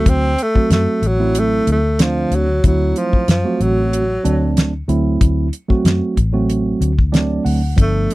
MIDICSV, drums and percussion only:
0, 0, Header, 1, 2, 480
1, 0, Start_track
1, 0, Tempo, 643087
1, 46, Time_signature, 4, 2, 24, 8
1, 6079, End_track
2, 0, Start_track
2, 0, Title_t, "Drums"
2, 45, Note_on_c, 9, 42, 78
2, 46, Note_on_c, 9, 36, 112
2, 120, Note_off_c, 9, 36, 0
2, 120, Note_off_c, 9, 42, 0
2, 287, Note_on_c, 9, 42, 62
2, 362, Note_off_c, 9, 42, 0
2, 414, Note_on_c, 9, 36, 73
2, 489, Note_off_c, 9, 36, 0
2, 526, Note_on_c, 9, 42, 80
2, 534, Note_on_c, 9, 38, 107
2, 601, Note_off_c, 9, 42, 0
2, 608, Note_off_c, 9, 38, 0
2, 767, Note_on_c, 9, 42, 62
2, 842, Note_off_c, 9, 42, 0
2, 1006, Note_on_c, 9, 42, 83
2, 1081, Note_off_c, 9, 42, 0
2, 1248, Note_on_c, 9, 42, 60
2, 1323, Note_off_c, 9, 42, 0
2, 1487, Note_on_c, 9, 42, 79
2, 1494, Note_on_c, 9, 38, 100
2, 1562, Note_off_c, 9, 42, 0
2, 1569, Note_off_c, 9, 38, 0
2, 1729, Note_on_c, 9, 42, 61
2, 1804, Note_off_c, 9, 42, 0
2, 1969, Note_on_c, 9, 42, 74
2, 1970, Note_on_c, 9, 36, 103
2, 2043, Note_off_c, 9, 42, 0
2, 2044, Note_off_c, 9, 36, 0
2, 2209, Note_on_c, 9, 42, 60
2, 2283, Note_off_c, 9, 42, 0
2, 2337, Note_on_c, 9, 36, 66
2, 2412, Note_off_c, 9, 36, 0
2, 2449, Note_on_c, 9, 42, 83
2, 2457, Note_on_c, 9, 38, 108
2, 2524, Note_off_c, 9, 42, 0
2, 2531, Note_off_c, 9, 38, 0
2, 2692, Note_on_c, 9, 42, 52
2, 2766, Note_off_c, 9, 42, 0
2, 2936, Note_on_c, 9, 42, 75
2, 3010, Note_off_c, 9, 42, 0
2, 3174, Note_on_c, 9, 42, 56
2, 3249, Note_off_c, 9, 42, 0
2, 3411, Note_on_c, 9, 42, 70
2, 3418, Note_on_c, 9, 38, 98
2, 3485, Note_off_c, 9, 42, 0
2, 3493, Note_off_c, 9, 38, 0
2, 3650, Note_on_c, 9, 42, 52
2, 3725, Note_off_c, 9, 42, 0
2, 3889, Note_on_c, 9, 36, 112
2, 3889, Note_on_c, 9, 42, 73
2, 3963, Note_off_c, 9, 36, 0
2, 3964, Note_off_c, 9, 42, 0
2, 4128, Note_on_c, 9, 42, 60
2, 4202, Note_off_c, 9, 42, 0
2, 4255, Note_on_c, 9, 36, 65
2, 4330, Note_off_c, 9, 36, 0
2, 4368, Note_on_c, 9, 42, 80
2, 4375, Note_on_c, 9, 38, 113
2, 4442, Note_off_c, 9, 42, 0
2, 4450, Note_off_c, 9, 38, 0
2, 4607, Note_on_c, 9, 36, 76
2, 4608, Note_on_c, 9, 42, 52
2, 4682, Note_off_c, 9, 36, 0
2, 4683, Note_off_c, 9, 42, 0
2, 4848, Note_on_c, 9, 42, 71
2, 4923, Note_off_c, 9, 42, 0
2, 5088, Note_on_c, 9, 42, 55
2, 5163, Note_off_c, 9, 42, 0
2, 5214, Note_on_c, 9, 36, 68
2, 5288, Note_off_c, 9, 36, 0
2, 5328, Note_on_c, 9, 42, 69
2, 5335, Note_on_c, 9, 38, 100
2, 5402, Note_off_c, 9, 42, 0
2, 5410, Note_off_c, 9, 38, 0
2, 5568, Note_on_c, 9, 46, 77
2, 5643, Note_off_c, 9, 46, 0
2, 5805, Note_on_c, 9, 36, 102
2, 5807, Note_on_c, 9, 42, 81
2, 5880, Note_off_c, 9, 36, 0
2, 5881, Note_off_c, 9, 42, 0
2, 6049, Note_on_c, 9, 42, 58
2, 6079, Note_off_c, 9, 42, 0
2, 6079, End_track
0, 0, End_of_file